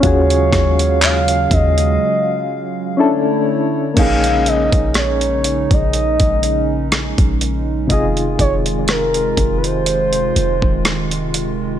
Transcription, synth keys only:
X:1
M:4/4
L:1/8
Q:"Swing 16ths" 1/4=61
K:Bbm
V:1 name="Synth keys"
[DFGA]6 [^C=D=E=A]2 | [B,DEA]8 | [C,EFA]8 |]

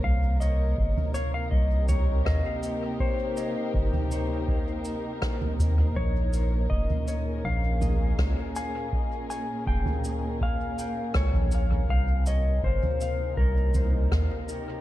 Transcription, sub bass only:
X:1
M:4/4
L:1/16
Q:1/4=81
K:Cphr
V:1 name="Sub bass" clef=bass
C,,4 G,,, z3 C,,4 E,, z3 | z4 G,,, z8 z E,,2 | B,,,4 F,,, z3 B,,,4 D,, z3 | z4 F,,, z6 z D,, B,,,3 |
C,,4 G,,, z3 C,,4 E,, z3 |]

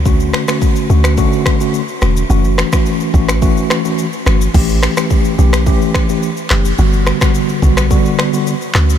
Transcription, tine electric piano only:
X:1
M:4/4
L:1/16
Q:1/4=107
K:Amix
V:1 name="Tine electric piano"
[D,A,CF]3 [D,A,CF]3 [D,A,CF]2 [D,A,CF]3 [D,A,CF] z2 [D,A,CF] z | [E,A,CF]3 [E,A,CF]3 [E,A,CF]2 [E,A,CF]3 [E,A,CF] z2 [E,A,CF] z | [E,A,CG]3 [E,A,CG]3 [E,A,CG]2 [E,A,CG]3 [E,A,CG] z2 [E,A,CG] z | [D,G,B,F]3 [D,G,B,F]3 [D,G,B,F]2 [D,G,B,F]3 [D,G,B,F] z2 [D,A,CF] z |]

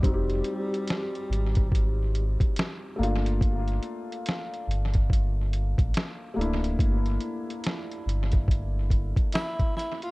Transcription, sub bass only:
X:1
M:4/4
L:1/16
Q:"Swing 16ths" 1/4=71
K:Gphr
V:1 name="Sub bass" clef=bass
F,,,2 z4 A,,,4- A,,, z3 G,,,2- | G,,,2 z4 G,,,4- G,,, =A,,, z2 D,,,2 | G,,,2 z4 G,,,4- G,,, z4 z |]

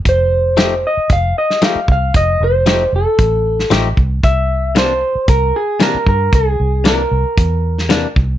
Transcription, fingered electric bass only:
X:1
M:4/4
L:1/16
Q:1/4=115
K:Cdor
V:1 name="Fingered electric bass" clef=bass
F,,,6- F,,, z F,,,2 z4 C,,2 | F,,,2 F,,,4 F,,, z A,,,4 A,,,2 C,,2 | C,,6- C,, z C,,2 z4 G,,2 | C,,2 C,,4 C,, z =E,,6 C,,2 |]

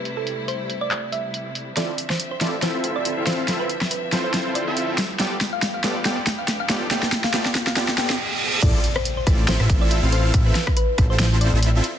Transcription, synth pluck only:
X:1
M:4/4
L:1/16
Q:"Swing 16ths" 1/4=140
K:Ddor
V:1 name="Synth pluck"
B A3 c3 d3 e4- e z | d3 c2 c3 c3 d3 c2- | c B3 B3 c3 d4- d z | g3 f2 f3 g3 f2 f3 |
g3 f g3 f g2 g2 z4 | d3 c2 c3 c3 d3 c2- | c B3 B3 c3 d4- d z |]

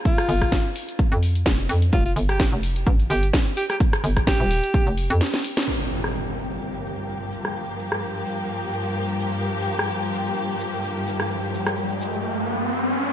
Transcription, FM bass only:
X:1
M:4/4
L:1/16
Q:"Swing 16ths" 1/4=128
K:Gm
V:1 name="FM bass" clef=bass
z2 G,,,3 z4 F,,3 F,,,2 F,,2 | F,,,2 G,,,3 F,,,3 A,,,2 G,,,2 z4 | z2 G,,,3 E,,,2 z2 F,,,2 F,, z4 | z16 |
z16 | z16 | z16 |]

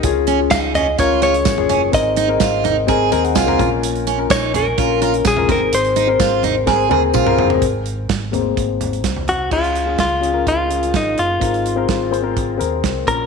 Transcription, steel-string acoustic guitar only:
X:1
M:4/4
L:1/16
Q:1/4=127
K:Abmix
V:1 name="Steel-string acoustic guitar"
z2 D z E2 D z F2 F z3 D z | z2 E z F2 E z A2 A z F3 z | z2 D z E2 D z F2 F z3 C z | z2 E z F2 E z A2 A z F3 z |
z16 | z16 | z16 |]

